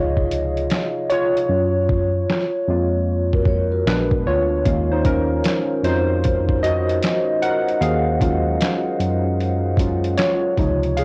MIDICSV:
0, 0, Header, 1, 5, 480
1, 0, Start_track
1, 0, Tempo, 789474
1, 908, Time_signature, 4, 2, 24, 8
1, 6715, End_track
2, 0, Start_track
2, 0, Title_t, "Vibraphone"
2, 0, Program_c, 0, 11
2, 2028, Note_on_c, 0, 70, 69
2, 2032, Note_on_c, 0, 66, 61
2, 2107, Note_off_c, 0, 70, 0
2, 2109, Note_off_c, 0, 66, 0
2, 2112, Note_on_c, 0, 73, 81
2, 2114, Note_on_c, 0, 70, 67
2, 2255, Note_off_c, 0, 70, 0
2, 2256, Note_off_c, 0, 73, 0
2, 2262, Note_on_c, 0, 70, 72
2, 2264, Note_on_c, 0, 66, 66
2, 2490, Note_off_c, 0, 70, 0
2, 2491, Note_off_c, 0, 66, 0
2, 6715, End_track
3, 0, Start_track
3, 0, Title_t, "Synth keys"
3, 0, Program_c, 1, 88
3, 0, Control_c, 1, 64, 127
3, 0, Note_on_c, 1, 48, 52
3, 0, Note_on_c, 1, 53, 58
3, 0, Note_on_c, 1, 63, 65
3, 0, Note_on_c, 1, 65, 63
3, 0, Note_on_c, 1, 68, 69
3, 0, Note_on_c, 1, 73, 79
3, 0, Note_on_c, 1, 75, 94
3, 0, Note_on_c, 1, 77, 92
3, 403, Note_off_c, 1, 73, 0
3, 410, Note_off_c, 1, 65, 0
3, 647, Note_off_c, 1, 53, 0
3, 648, Note_off_c, 1, 48, 0
3, 650, Note_off_c, 1, 63, 0
3, 665, Note_on_c, 1, 73, 114
3, 679, Note_on_c, 1, 65, 91
3, 917, Note_off_c, 1, 75, 0
3, 917, Control_c, 1, 64, 0
3, 919, Note_off_c, 1, 77, 0
3, 922, Note_off_c, 1, 68, 0
3, 1029, Control_c, 1, 64, 127
3, 1603, Note_off_c, 1, 73, 0
3, 1609, Note_off_c, 1, 65, 0
3, 1634, Note_on_c, 1, 56, 53
3, 1639, Note_on_c, 1, 58, 49
3, 1643, Note_on_c, 1, 65, 58
3, 2327, Note_off_c, 1, 56, 0
3, 2329, Note_off_c, 1, 58, 0
3, 2331, Note_off_c, 1, 65, 0
3, 2351, Note_on_c, 1, 56, 57
3, 2354, Note_on_c, 1, 59, 57
3, 2355, Control_c, 1, 64, 0
3, 2357, Note_on_c, 1, 71, 96
3, 2358, Note_on_c, 1, 62, 66
3, 2457, Control_c, 1, 64, 127
3, 2596, Note_on_c, 1, 73, 102
3, 2600, Note_off_c, 1, 71, 0
3, 2600, Note_on_c, 1, 65, 77
3, 2695, Note_off_c, 1, 56, 0
3, 2696, Note_off_c, 1, 59, 0
3, 2698, Note_off_c, 1, 62, 0
3, 2828, Note_on_c, 1, 51, 54
3, 2831, Note_on_c, 1, 61, 46
3, 2832, Note_on_c, 1, 56, 49
3, 2835, Control_c, 1, 64, 0
3, 2835, Note_on_c, 1, 77, 59
3, 2925, Control_c, 1, 64, 127
3, 2961, Note_off_c, 1, 73, 0
3, 2963, Note_off_c, 1, 65, 0
3, 2988, Note_on_c, 1, 72, 88
3, 2993, Note_on_c, 1, 63, 70
3, 3068, Note_off_c, 1, 63, 0
3, 3072, Note_off_c, 1, 61, 0
3, 3074, Note_off_c, 1, 72, 0
3, 3075, Note_on_c, 1, 70, 97
3, 3079, Note_on_c, 1, 61, 72
3, 3529, Note_off_c, 1, 61, 0
3, 3545, Note_off_c, 1, 56, 0
3, 3553, Note_on_c, 1, 56, 44
3, 3553, Note_on_c, 1, 66, 48
3, 3554, Note_on_c, 1, 72, 95
3, 3556, Note_on_c, 1, 61, 40
3, 3557, Note_on_c, 1, 65, 51
3, 3560, Note_on_c, 1, 63, 75
3, 3566, Note_off_c, 1, 70, 0
3, 3767, Note_off_c, 1, 56, 0
3, 3767, Note_off_c, 1, 66, 0
3, 3768, Note_off_c, 1, 61, 0
3, 3769, Note_off_c, 1, 65, 0
3, 4007, Note_off_c, 1, 72, 0
3, 4010, Note_off_c, 1, 63, 0
3, 4030, Note_on_c, 1, 75, 106
3, 4036, Note_on_c, 1, 66, 79
3, 4488, Note_off_c, 1, 66, 0
3, 4514, Note_on_c, 1, 78, 107
3, 4521, Note_on_c, 1, 70, 83
3, 4524, Note_off_c, 1, 75, 0
3, 4724, Note_off_c, 1, 51, 0
3, 4727, Note_off_c, 1, 77, 0
3, 4738, Note_off_c, 1, 70, 0
3, 4750, Note_on_c, 1, 77, 98
3, 4758, Note_off_c, 1, 78, 0
3, 4759, Note_on_c, 1, 68, 78
3, 4992, Note_on_c, 1, 54, 54
3, 4993, Note_on_c, 1, 56, 50
3, 4996, Note_on_c, 1, 61, 50
3, 5000, Note_on_c, 1, 65, 59
3, 5335, Note_off_c, 1, 54, 0
3, 5335, Note_off_c, 1, 56, 0
3, 5337, Note_off_c, 1, 61, 0
3, 5339, Note_off_c, 1, 65, 0
3, 5950, Note_on_c, 1, 54, 53
3, 5953, Note_on_c, 1, 56, 49
3, 5955, Note_on_c, 1, 61, 50
3, 5959, Note_on_c, 1, 65, 58
3, 6165, Note_off_c, 1, 54, 0
3, 6167, Note_off_c, 1, 56, 0
3, 6168, Note_off_c, 1, 61, 0
3, 6169, Note_off_c, 1, 68, 0
3, 6170, Note_off_c, 1, 65, 0
3, 6186, Note_on_c, 1, 73, 103
3, 6197, Note_on_c, 1, 65, 81
3, 6232, Note_off_c, 1, 77, 0
3, 6432, Note_on_c, 1, 53, 60
3, 6433, Note_on_c, 1, 48, 52
3, 6436, Note_on_c, 1, 63, 65
3, 6437, Control_c, 1, 64, 0
3, 6558, Control_c, 1, 64, 127
3, 6643, Note_off_c, 1, 73, 0
3, 6648, Note_off_c, 1, 65, 0
3, 6668, Note_on_c, 1, 77, 94
3, 6681, Note_on_c, 1, 68, 72
3, 6715, Note_off_c, 1, 48, 0
3, 6715, Note_off_c, 1, 53, 0
3, 6715, Note_off_c, 1, 63, 0
3, 6715, Note_off_c, 1, 68, 0
3, 6715, Note_off_c, 1, 77, 0
3, 6715, End_track
4, 0, Start_track
4, 0, Title_t, "Tine electric piano"
4, 0, Program_c, 2, 4
4, 0, Note_on_c, 2, 37, 95
4, 402, Note_off_c, 2, 37, 0
4, 907, Note_on_c, 2, 42, 99
4, 1363, Note_off_c, 2, 42, 0
4, 1628, Note_on_c, 2, 41, 99
4, 2324, Note_off_c, 2, 41, 0
4, 2349, Note_on_c, 2, 34, 94
4, 2569, Note_off_c, 2, 34, 0
4, 2592, Note_on_c, 2, 38, 75
4, 2811, Note_off_c, 2, 38, 0
4, 2831, Note_on_c, 2, 39, 100
4, 3285, Note_off_c, 2, 39, 0
4, 3547, Note_on_c, 2, 41, 84
4, 4243, Note_off_c, 2, 41, 0
4, 4750, Note_on_c, 2, 39, 107
4, 5205, Note_off_c, 2, 39, 0
4, 5471, Note_on_c, 2, 42, 97
4, 6165, Note_off_c, 2, 42, 0
4, 6429, Note_on_c, 2, 37, 90
4, 6715, Note_off_c, 2, 37, 0
4, 6715, End_track
5, 0, Start_track
5, 0, Title_t, "Drums"
5, 101, Note_on_c, 9, 36, 81
5, 162, Note_off_c, 9, 36, 0
5, 189, Note_on_c, 9, 42, 66
5, 250, Note_off_c, 9, 42, 0
5, 345, Note_on_c, 9, 42, 35
5, 406, Note_off_c, 9, 42, 0
5, 424, Note_on_c, 9, 42, 81
5, 432, Note_on_c, 9, 38, 115
5, 439, Note_on_c, 9, 39, 88
5, 485, Note_off_c, 9, 42, 0
5, 493, Note_off_c, 9, 38, 0
5, 500, Note_off_c, 9, 39, 0
5, 668, Note_on_c, 9, 42, 62
5, 729, Note_off_c, 9, 42, 0
5, 831, Note_on_c, 9, 42, 37
5, 891, Note_off_c, 9, 42, 0
5, 1150, Note_on_c, 9, 36, 96
5, 1210, Note_off_c, 9, 36, 0
5, 1396, Note_on_c, 9, 38, 119
5, 1402, Note_on_c, 9, 39, 92
5, 1456, Note_off_c, 9, 38, 0
5, 1463, Note_off_c, 9, 39, 0
5, 2025, Note_on_c, 9, 36, 83
5, 2086, Note_off_c, 9, 36, 0
5, 2100, Note_on_c, 9, 36, 94
5, 2161, Note_off_c, 9, 36, 0
5, 2355, Note_on_c, 9, 38, 101
5, 2362, Note_on_c, 9, 39, 87
5, 2416, Note_off_c, 9, 38, 0
5, 2423, Note_off_c, 9, 39, 0
5, 2501, Note_on_c, 9, 36, 96
5, 2562, Note_off_c, 9, 36, 0
5, 2830, Note_on_c, 9, 36, 109
5, 2831, Note_on_c, 9, 42, 69
5, 2891, Note_off_c, 9, 36, 0
5, 2891, Note_off_c, 9, 42, 0
5, 3069, Note_on_c, 9, 42, 68
5, 3070, Note_on_c, 9, 36, 95
5, 3130, Note_off_c, 9, 42, 0
5, 3131, Note_off_c, 9, 36, 0
5, 3310, Note_on_c, 9, 42, 78
5, 3317, Note_on_c, 9, 38, 119
5, 3324, Note_on_c, 9, 39, 93
5, 3370, Note_off_c, 9, 42, 0
5, 3378, Note_off_c, 9, 38, 0
5, 3385, Note_off_c, 9, 39, 0
5, 3554, Note_on_c, 9, 42, 59
5, 3570, Note_on_c, 9, 38, 35
5, 3614, Note_off_c, 9, 42, 0
5, 3630, Note_off_c, 9, 38, 0
5, 3794, Note_on_c, 9, 42, 67
5, 3801, Note_on_c, 9, 36, 90
5, 3855, Note_off_c, 9, 42, 0
5, 3862, Note_off_c, 9, 36, 0
5, 3945, Note_on_c, 9, 36, 84
5, 4006, Note_off_c, 9, 36, 0
5, 4039, Note_on_c, 9, 42, 66
5, 4099, Note_off_c, 9, 42, 0
5, 4192, Note_on_c, 9, 42, 35
5, 4253, Note_off_c, 9, 42, 0
5, 4273, Note_on_c, 9, 42, 85
5, 4281, Note_on_c, 9, 38, 105
5, 4288, Note_on_c, 9, 39, 85
5, 4334, Note_off_c, 9, 42, 0
5, 4342, Note_off_c, 9, 38, 0
5, 4349, Note_off_c, 9, 39, 0
5, 4517, Note_on_c, 9, 42, 61
5, 4577, Note_off_c, 9, 42, 0
5, 4674, Note_on_c, 9, 42, 36
5, 4734, Note_off_c, 9, 42, 0
5, 4755, Note_on_c, 9, 42, 65
5, 4816, Note_off_c, 9, 42, 0
5, 4992, Note_on_c, 9, 36, 93
5, 4995, Note_on_c, 9, 42, 63
5, 5052, Note_off_c, 9, 36, 0
5, 5056, Note_off_c, 9, 42, 0
5, 5233, Note_on_c, 9, 42, 78
5, 5241, Note_on_c, 9, 38, 116
5, 5248, Note_on_c, 9, 39, 91
5, 5294, Note_off_c, 9, 42, 0
5, 5302, Note_off_c, 9, 38, 0
5, 5309, Note_off_c, 9, 39, 0
5, 5474, Note_on_c, 9, 42, 58
5, 5535, Note_off_c, 9, 42, 0
5, 5718, Note_on_c, 9, 42, 70
5, 5779, Note_off_c, 9, 42, 0
5, 5941, Note_on_c, 9, 36, 92
5, 5954, Note_on_c, 9, 42, 64
5, 6001, Note_off_c, 9, 36, 0
5, 6015, Note_off_c, 9, 42, 0
5, 6104, Note_on_c, 9, 42, 37
5, 6165, Note_off_c, 9, 42, 0
5, 6186, Note_on_c, 9, 42, 85
5, 6194, Note_on_c, 9, 38, 108
5, 6201, Note_on_c, 9, 39, 87
5, 6247, Note_off_c, 9, 42, 0
5, 6255, Note_off_c, 9, 38, 0
5, 6261, Note_off_c, 9, 39, 0
5, 6428, Note_on_c, 9, 36, 102
5, 6429, Note_on_c, 9, 42, 66
5, 6489, Note_off_c, 9, 36, 0
5, 6490, Note_off_c, 9, 42, 0
5, 6586, Note_on_c, 9, 42, 36
5, 6646, Note_off_c, 9, 42, 0
5, 6671, Note_on_c, 9, 42, 67
5, 6715, Note_off_c, 9, 42, 0
5, 6715, End_track
0, 0, End_of_file